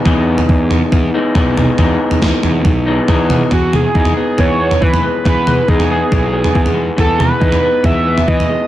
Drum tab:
SD |----------------|----o-----------|----------------|----------------|
T2 |--------------o-|--------------o-|--o-------------|--o-------------|
FT |o--o--o-o---o-o-|o--o--o-o---o-o-|o-o--o--o--o-o--|o-o--o--o--o-o--|
BD |o---o---o---o---|o---o---o---o---|o---o---o---o---|o---o---o---o---|

SD |----------------|
T2 |--o-------------|
FT |o-o--o--o--o-o--|
BD |o---o---o---o---|